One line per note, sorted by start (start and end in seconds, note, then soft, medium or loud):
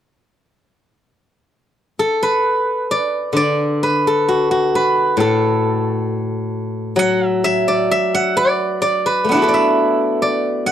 1.99 4.07 A4 medium
2.23 3.83 B4 medium
2.91 3.36 D5 medium
3.33 6.08 D3 soft
3.33 5.21 D5 medium
3.83 4.75 B4 medium
4.07 5.20 A4 medium
4.29 4.51 F#4 medium
4.51 6.94 F#4 medium
4.75 6.80 B4 medium
5.17 7.87 A2 soft
5.17 7.40 A4 medium
6.96 9.70 F#3 soft
6.96 7.26 F#5 medium
7.26 7.44 E5 medium
7.44 7.91 E5 medium
7.68 8.36 D5 medium
7.91 9.53 E5 medium
8.15 9.31 F#5 medium
8.37 8.81 D5 medium
8.82 9.48 D5 medium
9.06 9.43 B4 medium
9.25 10.72 A3 soft
9.29 10.72 B3 soft
9.29 10.72 D4 soft
9.29 10.66 F#5 medium
9.34 10.72 E4 soft
9.34 10.72 F#4 soft
9.42 10.72 A4 soft
9.42 10.72 B4 soft
9.48 10.22 D5 soft
9.54 10.72 E5 medium
10.22 10.72 D5 medium
10.66 10.72 F#5 medium